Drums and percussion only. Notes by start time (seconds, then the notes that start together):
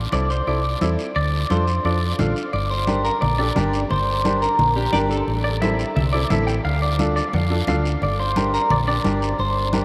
0.12 high conga, short guiro
0.30 short guiro
0.47 long guiro
0.81 high conga, short guiro
0.99 short guiro
1.16 long guiro
1.50 high conga, short guiro
1.68 short guiro
1.85 long guiro
2.19 high conga, low conga, short guiro
2.36 short guiro
2.53 high conga, long guiro
2.87 high conga, short guiro
3.05 short guiro
3.22 high conga, low conga, long guiro
3.56 high conga, low conga, short guiro
3.73 short guiro
3.90 high conga, low conga, long guiro
4.25 high conga, short guiro
4.42 short guiro
4.59 high conga, low conga, long guiro
4.93 high conga, short guiro
5.11 short guiro
5.28 high conga, long guiro
5.62 high conga, short guiro
5.79 short guiro
5.96 high conga, low conga, long guiro
6.30 high conga, low conga, short guiro
6.48 short guiro
6.65 high conga, long guiro
6.99 high conga, short guiro
7.17 short guiro
7.33 high conga, low conga, long guiro
7.67 high conga, low conga, short guiro
7.85 short guiro
8.02 high conga, low conga, long guiro
8.36 high conga, short guiro
8.54 short guiro
8.70 high conga, low conga, long guiro
9.04 high conga, short guiro
9.22 short guiro
9.39 high conga, long guiro
9.73 high conga, short guiro